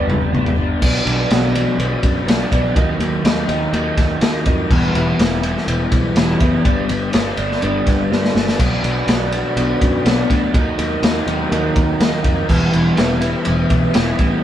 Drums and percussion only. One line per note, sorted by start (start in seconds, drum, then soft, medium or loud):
0.10 floor tom medium
0.10 mid tom medium
0.35 mid tom medium
0.46 floor tom medium
0.82 kick loud
0.82 crash loud
1.07 ride medium
1.30 snare loud
1.30 ride loud
1.55 ride medium
1.80 ride loud
2.03 kick medium
2.03 ride medium
2.28 snare loud
2.28 ride loud
2.52 kick medium
2.52 ride medium
2.76 kick loud
2.76 ride loud
3.00 ride medium
3.25 snare loud
3.25 ride loud
3.49 ride medium
3.73 ride medium
3.97 kick medium
3.97 snare soft
3.97 ride medium
4.21 snare loud
4.21 ride loud
4.46 kick medium
4.46 ride medium
4.71 kick loud
4.71 crash loud
4.95 ride medium
5.19 snare loud
5.19 ride loud
5.43 ride medium
5.57 snare soft
5.68 ride loud
5.92 kick medium
5.92 ride medium
6.16 snare loud
6.16 ride loud
6.40 kick medium
6.40 ride medium
6.65 kick loud
6.65 ride medium
6.89 ride medium
7.13 snare loud
7.13 ride medium
7.37 ride medium
7.51 snare soft
7.62 ride medium
7.87 kick medium
7.87 snare soft
7.87 ride medium
8.12 snare medium
8.25 snare medium
8.36 snare medium
8.49 snare medium
8.60 kick loud
8.60 crash medium
8.60 ride medium
8.84 ride medium
9.08 snare loud
9.08 ride loud
9.32 ride medium
9.57 ride loud
9.81 kick medium
9.81 ride medium
10.06 snare loud
10.06 ride loud
10.30 kick medium
10.30 ride medium
10.54 kick loud
10.54 ride loud
10.79 ride medium
11.03 snare loud
11.03 ride loud
11.27 ride medium
11.52 ride medium
11.76 kick medium
11.76 ride medium
12.00 snare loud
12.00 ride loud
12.24 kick medium
12.24 ride medium
12.49 kick loud
12.49 crash loud
12.73 ride medium
12.97 snare loud
12.97 ride medium
13.21 ride medium
13.45 ride loud
13.70 kick medium
13.70 ride medium
13.94 snare loud
13.94 ride loud
14.19 kick medium
14.19 ride medium